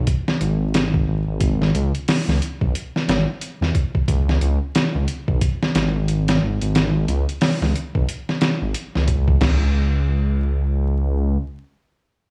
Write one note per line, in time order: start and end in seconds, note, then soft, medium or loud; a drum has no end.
0.07 kick loud
0.07 closed hi-hat medium
0.28 snare medium
0.41 1.05 G#1 medium
0.41 closed hi-hat medium
0.74 snare loud
0.74 closed hi-hat medium
0.94 kick medium
1.08 1.25 G#1 medium
1.28 1.72 G#1 loud
1.41 kick loud
1.41 closed hi-hat medium
1.62 snare soft
1.75 1.92 C#2 medium
1.75 closed hi-hat medium
1.95 closed hi-hat soft
2.08 snare loud
2.08 open hi-hat medium
2.28 2.40 C#2 medium
2.28 snare soft
2.42 closed hi-hat medium
2.61 2.73 B1 medium
2.61 kick medium
2.75 closed hi-hat medium
2.96 snare soft
3.08 3.25 G#1 loud
3.08 snare loud
3.08 closed hi-hat medium
3.41 closed hi-hat medium
3.61 3.73 E2 medium
3.61 snare soft
3.75 kick medium
3.75 closed hi-hat medium
3.95 kick loud
4.08 4.38 C#2 medium
4.08 kick loud
4.08 closed hi-hat medium
4.29 snare soft
4.41 4.59 C#2 loud
4.41 closed hi-hat medium
4.75 snare loud
4.75 closed hi-hat medium
4.95 5.06 C#2 medium
5.08 closed hi-hat medium
5.28 5.40 B1 medium
5.28 kick loud
5.41 kick loud
5.41 closed hi-hat medium
5.62 snare medium
5.75 6.39 G#1 medium
5.75 snare loud
5.75 closed hi-hat medium
6.08 closed hi-hat medium
6.28 snare loud
6.28 closed hi-hat medium
6.42 6.59 G#1 medium
6.62 7.05 G#1 loud
6.62 closed hi-hat medium
6.75 snare loud
6.75 closed hi-hat medium
7.08 7.25 C#2 medium
7.08 closed hi-hat medium
7.29 closed hi-hat soft
7.41 snare loud
7.41 open hi-hat medium
7.61 7.73 C#2 medium
7.61 snare medium
7.76 closed hi-hat medium
7.95 8.07 B1 medium
7.95 kick loud
8.09 closed hi-hat medium
8.29 snare soft
8.41 snare loud
8.41 closed hi-hat medium
8.62 8.73 G#1 medium
8.74 closed hi-hat medium
8.95 9.39 C#2 loud
8.95 snare soft
9.08 kick medium
9.08 closed hi-hat medium
9.28 kick loud
9.41 11.37 C#2 medium
9.41 snare loud
9.41 floor tom loud
9.41 crash medium